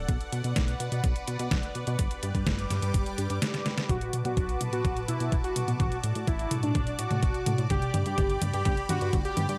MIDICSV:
0, 0, Header, 1, 5, 480
1, 0, Start_track
1, 0, Tempo, 476190
1, 86, Time_signature, 4, 2, 24, 8
1, 9659, End_track
2, 0, Start_track
2, 0, Title_t, "Analog synth pad"
2, 0, Program_c, 0, 89
2, 0, Note_on_c, 0, 74, 76
2, 0, Note_on_c, 0, 78, 90
2, 87, Note_on_c, 0, 71, 83
2, 1967, Note_off_c, 0, 78, 0
2, 2005, Note_on_c, 0, 55, 84
2, 2005, Note_on_c, 0, 67, 78
2, 2005, Note_on_c, 0, 86, 91
2, 3885, Note_off_c, 0, 74, 0
2, 3888, Note_off_c, 0, 71, 0
2, 3906, Note_off_c, 0, 55, 0
2, 3906, Note_off_c, 0, 67, 0
2, 3906, Note_off_c, 0, 86, 0
2, 3926, Note_on_c, 0, 71, 74
2, 3926, Note_on_c, 0, 81, 75
2, 3927, Note_on_c, 0, 66, 83
2, 3927, Note_on_c, 0, 86, 88
2, 5827, Note_off_c, 0, 71, 0
2, 5845, Note_on_c, 0, 74, 77
2, 7727, Note_off_c, 0, 81, 0
2, 7728, Note_off_c, 0, 66, 0
2, 7763, Note_on_c, 0, 83, 75
2, 7765, Note_on_c, 0, 67, 82
2, 9647, Note_off_c, 0, 74, 0
2, 9659, Note_off_c, 0, 67, 0
2, 9659, Note_off_c, 0, 83, 0
2, 9659, Note_off_c, 0, 86, 0
2, 9659, End_track
3, 0, Start_track
3, 0, Title_t, "Analog synth lead"
3, 0, Program_c, 1, 81
3, 3929, Note_on_c, 1, 66, 96
3, 4200, Note_off_c, 1, 66, 0
3, 4288, Note_on_c, 1, 66, 91
3, 4650, Note_off_c, 1, 66, 0
3, 4768, Note_on_c, 1, 66, 93
3, 5039, Note_off_c, 1, 66, 0
3, 5124, Note_on_c, 1, 64, 96
3, 5398, Note_off_c, 1, 64, 0
3, 5483, Note_on_c, 1, 66, 94
3, 5757, Note_off_c, 1, 66, 0
3, 5842, Note_on_c, 1, 66, 87
3, 6026, Note_off_c, 1, 66, 0
3, 6326, Note_on_c, 1, 64, 94
3, 6598, Note_off_c, 1, 64, 0
3, 6685, Note_on_c, 1, 62, 94
3, 6958, Note_off_c, 1, 62, 0
3, 7047, Note_on_c, 1, 66, 99
3, 7670, Note_off_c, 1, 66, 0
3, 7769, Note_on_c, 1, 67, 96
3, 8040, Note_off_c, 1, 67, 0
3, 8130, Note_on_c, 1, 67, 93
3, 8491, Note_off_c, 1, 67, 0
3, 8608, Note_on_c, 1, 67, 99
3, 8879, Note_off_c, 1, 67, 0
3, 8967, Note_on_c, 1, 66, 97
3, 9239, Note_off_c, 1, 66, 0
3, 9324, Note_on_c, 1, 67, 98
3, 9597, Note_off_c, 1, 67, 0
3, 9659, End_track
4, 0, Start_track
4, 0, Title_t, "Analog synth bass"
4, 0, Program_c, 2, 38
4, 87, Note_on_c, 2, 35, 94
4, 183, Note_off_c, 2, 35, 0
4, 327, Note_on_c, 2, 47, 83
4, 423, Note_off_c, 2, 47, 0
4, 446, Note_on_c, 2, 47, 91
4, 542, Note_off_c, 2, 47, 0
4, 567, Note_on_c, 2, 35, 95
4, 759, Note_off_c, 2, 35, 0
4, 806, Note_on_c, 2, 47, 81
4, 902, Note_off_c, 2, 47, 0
4, 927, Note_on_c, 2, 47, 94
4, 1023, Note_off_c, 2, 47, 0
4, 1046, Note_on_c, 2, 35, 102
4, 1142, Note_off_c, 2, 35, 0
4, 1288, Note_on_c, 2, 47, 86
4, 1383, Note_off_c, 2, 47, 0
4, 1408, Note_on_c, 2, 47, 97
4, 1503, Note_off_c, 2, 47, 0
4, 1526, Note_on_c, 2, 35, 91
4, 1622, Note_off_c, 2, 35, 0
4, 1767, Note_on_c, 2, 47, 74
4, 1863, Note_off_c, 2, 47, 0
4, 1887, Note_on_c, 2, 47, 101
4, 1983, Note_off_c, 2, 47, 0
4, 2005, Note_on_c, 2, 31, 96
4, 2101, Note_off_c, 2, 31, 0
4, 2247, Note_on_c, 2, 43, 84
4, 2342, Note_off_c, 2, 43, 0
4, 2365, Note_on_c, 2, 43, 86
4, 2462, Note_off_c, 2, 43, 0
4, 2485, Note_on_c, 2, 31, 97
4, 2678, Note_off_c, 2, 31, 0
4, 2727, Note_on_c, 2, 43, 86
4, 2823, Note_off_c, 2, 43, 0
4, 2848, Note_on_c, 2, 43, 92
4, 2943, Note_off_c, 2, 43, 0
4, 2966, Note_on_c, 2, 31, 84
4, 3062, Note_off_c, 2, 31, 0
4, 3207, Note_on_c, 2, 43, 89
4, 3303, Note_off_c, 2, 43, 0
4, 3328, Note_on_c, 2, 43, 88
4, 3423, Note_off_c, 2, 43, 0
4, 3925, Note_on_c, 2, 35, 95
4, 4022, Note_off_c, 2, 35, 0
4, 4167, Note_on_c, 2, 47, 83
4, 4263, Note_off_c, 2, 47, 0
4, 4288, Note_on_c, 2, 47, 87
4, 4383, Note_off_c, 2, 47, 0
4, 4405, Note_on_c, 2, 35, 95
4, 4598, Note_off_c, 2, 35, 0
4, 4647, Note_on_c, 2, 47, 81
4, 4743, Note_off_c, 2, 47, 0
4, 4767, Note_on_c, 2, 47, 94
4, 4862, Note_off_c, 2, 47, 0
4, 4885, Note_on_c, 2, 35, 97
4, 4982, Note_off_c, 2, 35, 0
4, 5126, Note_on_c, 2, 47, 83
4, 5222, Note_off_c, 2, 47, 0
4, 5245, Note_on_c, 2, 47, 95
4, 5342, Note_off_c, 2, 47, 0
4, 5365, Note_on_c, 2, 35, 91
4, 5462, Note_off_c, 2, 35, 0
4, 5605, Note_on_c, 2, 47, 76
4, 5702, Note_off_c, 2, 47, 0
4, 5724, Note_on_c, 2, 47, 99
4, 5821, Note_off_c, 2, 47, 0
4, 5845, Note_on_c, 2, 33, 97
4, 5942, Note_off_c, 2, 33, 0
4, 6085, Note_on_c, 2, 45, 84
4, 6181, Note_off_c, 2, 45, 0
4, 6205, Note_on_c, 2, 45, 89
4, 6302, Note_off_c, 2, 45, 0
4, 6325, Note_on_c, 2, 33, 95
4, 6517, Note_off_c, 2, 33, 0
4, 6565, Note_on_c, 2, 45, 84
4, 6662, Note_off_c, 2, 45, 0
4, 6685, Note_on_c, 2, 45, 93
4, 6781, Note_off_c, 2, 45, 0
4, 6805, Note_on_c, 2, 33, 95
4, 6902, Note_off_c, 2, 33, 0
4, 7044, Note_on_c, 2, 45, 78
4, 7141, Note_off_c, 2, 45, 0
4, 7164, Note_on_c, 2, 45, 86
4, 7261, Note_off_c, 2, 45, 0
4, 7286, Note_on_c, 2, 33, 87
4, 7382, Note_off_c, 2, 33, 0
4, 7525, Note_on_c, 2, 45, 90
4, 7622, Note_off_c, 2, 45, 0
4, 7645, Note_on_c, 2, 45, 85
4, 7742, Note_off_c, 2, 45, 0
4, 7766, Note_on_c, 2, 31, 91
4, 7862, Note_off_c, 2, 31, 0
4, 8004, Note_on_c, 2, 43, 87
4, 8101, Note_off_c, 2, 43, 0
4, 8124, Note_on_c, 2, 43, 89
4, 8221, Note_off_c, 2, 43, 0
4, 8246, Note_on_c, 2, 31, 101
4, 8438, Note_off_c, 2, 31, 0
4, 8486, Note_on_c, 2, 43, 82
4, 8582, Note_off_c, 2, 43, 0
4, 8606, Note_on_c, 2, 43, 92
4, 8702, Note_off_c, 2, 43, 0
4, 8726, Note_on_c, 2, 31, 101
4, 8822, Note_off_c, 2, 31, 0
4, 8967, Note_on_c, 2, 43, 88
4, 9063, Note_off_c, 2, 43, 0
4, 9086, Note_on_c, 2, 43, 96
4, 9182, Note_off_c, 2, 43, 0
4, 9206, Note_on_c, 2, 31, 91
4, 9302, Note_off_c, 2, 31, 0
4, 9445, Note_on_c, 2, 43, 75
4, 9542, Note_off_c, 2, 43, 0
4, 9565, Note_on_c, 2, 43, 104
4, 9659, Note_off_c, 2, 43, 0
4, 9659, End_track
5, 0, Start_track
5, 0, Title_t, "Drums"
5, 86, Note_on_c, 9, 42, 94
5, 87, Note_on_c, 9, 36, 106
5, 187, Note_off_c, 9, 42, 0
5, 188, Note_off_c, 9, 36, 0
5, 208, Note_on_c, 9, 42, 39
5, 309, Note_off_c, 9, 42, 0
5, 328, Note_on_c, 9, 42, 60
5, 428, Note_off_c, 9, 42, 0
5, 447, Note_on_c, 9, 42, 38
5, 547, Note_off_c, 9, 42, 0
5, 566, Note_on_c, 9, 36, 103
5, 566, Note_on_c, 9, 38, 107
5, 566, Note_on_c, 9, 42, 93
5, 666, Note_off_c, 9, 38, 0
5, 666, Note_off_c, 9, 42, 0
5, 667, Note_off_c, 9, 36, 0
5, 686, Note_on_c, 9, 42, 40
5, 787, Note_off_c, 9, 42, 0
5, 807, Note_on_c, 9, 42, 66
5, 908, Note_off_c, 9, 42, 0
5, 927, Note_on_c, 9, 42, 40
5, 1028, Note_off_c, 9, 42, 0
5, 1046, Note_on_c, 9, 36, 103
5, 1046, Note_on_c, 9, 42, 93
5, 1146, Note_off_c, 9, 42, 0
5, 1147, Note_off_c, 9, 36, 0
5, 1166, Note_on_c, 9, 42, 38
5, 1267, Note_off_c, 9, 42, 0
5, 1286, Note_on_c, 9, 42, 67
5, 1386, Note_off_c, 9, 42, 0
5, 1405, Note_on_c, 9, 42, 40
5, 1506, Note_off_c, 9, 42, 0
5, 1525, Note_on_c, 9, 38, 103
5, 1525, Note_on_c, 9, 42, 85
5, 1526, Note_on_c, 9, 36, 112
5, 1626, Note_off_c, 9, 36, 0
5, 1626, Note_off_c, 9, 38, 0
5, 1626, Note_off_c, 9, 42, 0
5, 1644, Note_on_c, 9, 42, 36
5, 1745, Note_off_c, 9, 42, 0
5, 1764, Note_on_c, 9, 42, 39
5, 1865, Note_off_c, 9, 42, 0
5, 1885, Note_on_c, 9, 42, 40
5, 1986, Note_off_c, 9, 42, 0
5, 2005, Note_on_c, 9, 36, 107
5, 2005, Note_on_c, 9, 42, 96
5, 2105, Note_off_c, 9, 42, 0
5, 2106, Note_off_c, 9, 36, 0
5, 2125, Note_on_c, 9, 42, 41
5, 2226, Note_off_c, 9, 42, 0
5, 2245, Note_on_c, 9, 42, 65
5, 2346, Note_off_c, 9, 42, 0
5, 2365, Note_on_c, 9, 36, 57
5, 2366, Note_on_c, 9, 42, 41
5, 2466, Note_off_c, 9, 36, 0
5, 2466, Note_off_c, 9, 42, 0
5, 2486, Note_on_c, 9, 36, 110
5, 2486, Note_on_c, 9, 38, 112
5, 2486, Note_on_c, 9, 42, 92
5, 2586, Note_off_c, 9, 36, 0
5, 2586, Note_off_c, 9, 38, 0
5, 2586, Note_off_c, 9, 42, 0
5, 2607, Note_on_c, 9, 42, 41
5, 2707, Note_off_c, 9, 42, 0
5, 2726, Note_on_c, 9, 38, 35
5, 2726, Note_on_c, 9, 42, 69
5, 2827, Note_off_c, 9, 38, 0
5, 2827, Note_off_c, 9, 42, 0
5, 2847, Note_on_c, 9, 42, 42
5, 2948, Note_off_c, 9, 42, 0
5, 2966, Note_on_c, 9, 36, 109
5, 2966, Note_on_c, 9, 42, 95
5, 3066, Note_off_c, 9, 36, 0
5, 3067, Note_off_c, 9, 42, 0
5, 3087, Note_on_c, 9, 42, 41
5, 3188, Note_off_c, 9, 42, 0
5, 3206, Note_on_c, 9, 42, 68
5, 3307, Note_off_c, 9, 42, 0
5, 3326, Note_on_c, 9, 42, 40
5, 3427, Note_off_c, 9, 42, 0
5, 3448, Note_on_c, 9, 38, 107
5, 3448, Note_on_c, 9, 42, 89
5, 3548, Note_off_c, 9, 38, 0
5, 3548, Note_off_c, 9, 42, 0
5, 3568, Note_on_c, 9, 38, 53
5, 3568, Note_on_c, 9, 42, 37
5, 3668, Note_off_c, 9, 38, 0
5, 3668, Note_off_c, 9, 42, 0
5, 3687, Note_on_c, 9, 38, 76
5, 3687, Note_on_c, 9, 42, 40
5, 3788, Note_off_c, 9, 38, 0
5, 3788, Note_off_c, 9, 42, 0
5, 3806, Note_on_c, 9, 38, 81
5, 3806, Note_on_c, 9, 42, 39
5, 3907, Note_off_c, 9, 38, 0
5, 3907, Note_off_c, 9, 42, 0
5, 3926, Note_on_c, 9, 36, 109
5, 3926, Note_on_c, 9, 42, 67
5, 3926, Note_on_c, 9, 47, 49
5, 4026, Note_off_c, 9, 42, 0
5, 4026, Note_off_c, 9, 47, 0
5, 4027, Note_off_c, 9, 36, 0
5, 4046, Note_on_c, 9, 42, 38
5, 4146, Note_off_c, 9, 42, 0
5, 4165, Note_on_c, 9, 42, 92
5, 4266, Note_off_c, 9, 42, 0
5, 4285, Note_on_c, 9, 42, 39
5, 4285, Note_on_c, 9, 47, 43
5, 4386, Note_off_c, 9, 42, 0
5, 4386, Note_off_c, 9, 47, 0
5, 4405, Note_on_c, 9, 42, 64
5, 4406, Note_on_c, 9, 36, 115
5, 4506, Note_off_c, 9, 42, 0
5, 4507, Note_off_c, 9, 36, 0
5, 4526, Note_on_c, 9, 42, 38
5, 4626, Note_off_c, 9, 42, 0
5, 4644, Note_on_c, 9, 42, 95
5, 4644, Note_on_c, 9, 47, 51
5, 4745, Note_off_c, 9, 42, 0
5, 4745, Note_off_c, 9, 47, 0
5, 4766, Note_on_c, 9, 42, 42
5, 4866, Note_off_c, 9, 42, 0
5, 4885, Note_on_c, 9, 36, 112
5, 4886, Note_on_c, 9, 42, 68
5, 4886, Note_on_c, 9, 47, 53
5, 4986, Note_off_c, 9, 36, 0
5, 4987, Note_off_c, 9, 42, 0
5, 4987, Note_off_c, 9, 47, 0
5, 5006, Note_on_c, 9, 42, 40
5, 5107, Note_off_c, 9, 42, 0
5, 5125, Note_on_c, 9, 42, 91
5, 5226, Note_off_c, 9, 42, 0
5, 5245, Note_on_c, 9, 42, 38
5, 5346, Note_off_c, 9, 42, 0
5, 5365, Note_on_c, 9, 36, 123
5, 5365, Note_on_c, 9, 42, 64
5, 5465, Note_off_c, 9, 42, 0
5, 5466, Note_off_c, 9, 36, 0
5, 5486, Note_on_c, 9, 42, 39
5, 5587, Note_off_c, 9, 42, 0
5, 5605, Note_on_c, 9, 42, 95
5, 5605, Note_on_c, 9, 47, 56
5, 5706, Note_off_c, 9, 42, 0
5, 5706, Note_off_c, 9, 47, 0
5, 5726, Note_on_c, 9, 42, 40
5, 5827, Note_off_c, 9, 42, 0
5, 5845, Note_on_c, 9, 36, 109
5, 5845, Note_on_c, 9, 42, 66
5, 5845, Note_on_c, 9, 47, 59
5, 5946, Note_off_c, 9, 36, 0
5, 5946, Note_off_c, 9, 42, 0
5, 5946, Note_off_c, 9, 47, 0
5, 5965, Note_on_c, 9, 42, 39
5, 6066, Note_off_c, 9, 42, 0
5, 6083, Note_on_c, 9, 42, 84
5, 6184, Note_off_c, 9, 42, 0
5, 6203, Note_on_c, 9, 42, 37
5, 6304, Note_off_c, 9, 42, 0
5, 6325, Note_on_c, 9, 36, 115
5, 6325, Note_on_c, 9, 42, 64
5, 6426, Note_off_c, 9, 36, 0
5, 6426, Note_off_c, 9, 42, 0
5, 6444, Note_on_c, 9, 42, 39
5, 6545, Note_off_c, 9, 42, 0
5, 6563, Note_on_c, 9, 42, 94
5, 6563, Note_on_c, 9, 47, 64
5, 6664, Note_off_c, 9, 42, 0
5, 6664, Note_off_c, 9, 47, 0
5, 6682, Note_on_c, 9, 42, 38
5, 6783, Note_off_c, 9, 42, 0
5, 6804, Note_on_c, 9, 42, 66
5, 6804, Note_on_c, 9, 47, 66
5, 6805, Note_on_c, 9, 36, 112
5, 6904, Note_off_c, 9, 42, 0
5, 6904, Note_off_c, 9, 47, 0
5, 6906, Note_off_c, 9, 36, 0
5, 6923, Note_on_c, 9, 42, 38
5, 7024, Note_off_c, 9, 42, 0
5, 7043, Note_on_c, 9, 42, 93
5, 7144, Note_off_c, 9, 42, 0
5, 7163, Note_on_c, 9, 42, 37
5, 7163, Note_on_c, 9, 47, 58
5, 7264, Note_off_c, 9, 42, 0
5, 7264, Note_off_c, 9, 47, 0
5, 7283, Note_on_c, 9, 42, 62
5, 7285, Note_on_c, 9, 36, 123
5, 7384, Note_off_c, 9, 42, 0
5, 7386, Note_off_c, 9, 36, 0
5, 7403, Note_on_c, 9, 42, 38
5, 7504, Note_off_c, 9, 42, 0
5, 7523, Note_on_c, 9, 42, 93
5, 7523, Note_on_c, 9, 47, 71
5, 7624, Note_off_c, 9, 42, 0
5, 7624, Note_off_c, 9, 47, 0
5, 7644, Note_on_c, 9, 42, 39
5, 7745, Note_off_c, 9, 42, 0
5, 7763, Note_on_c, 9, 42, 63
5, 7763, Note_on_c, 9, 47, 75
5, 7765, Note_on_c, 9, 36, 114
5, 7864, Note_off_c, 9, 42, 0
5, 7864, Note_off_c, 9, 47, 0
5, 7866, Note_off_c, 9, 36, 0
5, 7883, Note_on_c, 9, 42, 38
5, 7984, Note_off_c, 9, 42, 0
5, 8003, Note_on_c, 9, 42, 84
5, 8003, Note_on_c, 9, 47, 74
5, 8104, Note_off_c, 9, 42, 0
5, 8104, Note_off_c, 9, 47, 0
5, 8122, Note_on_c, 9, 42, 39
5, 8223, Note_off_c, 9, 42, 0
5, 8243, Note_on_c, 9, 42, 64
5, 8243, Note_on_c, 9, 47, 73
5, 8245, Note_on_c, 9, 36, 119
5, 8344, Note_off_c, 9, 42, 0
5, 8344, Note_off_c, 9, 47, 0
5, 8346, Note_off_c, 9, 36, 0
5, 8363, Note_on_c, 9, 42, 37
5, 8463, Note_off_c, 9, 42, 0
5, 8484, Note_on_c, 9, 42, 91
5, 8484, Note_on_c, 9, 47, 77
5, 8584, Note_off_c, 9, 42, 0
5, 8584, Note_off_c, 9, 47, 0
5, 8604, Note_on_c, 9, 42, 38
5, 8704, Note_off_c, 9, 42, 0
5, 8723, Note_on_c, 9, 42, 65
5, 8723, Note_on_c, 9, 47, 83
5, 8725, Note_on_c, 9, 36, 117
5, 8824, Note_off_c, 9, 42, 0
5, 8824, Note_off_c, 9, 47, 0
5, 8826, Note_off_c, 9, 36, 0
5, 8843, Note_on_c, 9, 42, 37
5, 8944, Note_off_c, 9, 42, 0
5, 8963, Note_on_c, 9, 42, 89
5, 8963, Note_on_c, 9, 47, 83
5, 9064, Note_off_c, 9, 42, 0
5, 9064, Note_off_c, 9, 47, 0
5, 9084, Note_on_c, 9, 42, 37
5, 9185, Note_off_c, 9, 42, 0
5, 9204, Note_on_c, 9, 42, 59
5, 9204, Note_on_c, 9, 47, 84
5, 9205, Note_on_c, 9, 36, 127
5, 9305, Note_off_c, 9, 42, 0
5, 9305, Note_off_c, 9, 47, 0
5, 9306, Note_off_c, 9, 36, 0
5, 9324, Note_on_c, 9, 42, 37
5, 9425, Note_off_c, 9, 42, 0
5, 9444, Note_on_c, 9, 42, 88
5, 9444, Note_on_c, 9, 47, 90
5, 9545, Note_off_c, 9, 42, 0
5, 9545, Note_off_c, 9, 47, 0
5, 9565, Note_on_c, 9, 42, 39
5, 9659, Note_off_c, 9, 42, 0
5, 9659, End_track
0, 0, End_of_file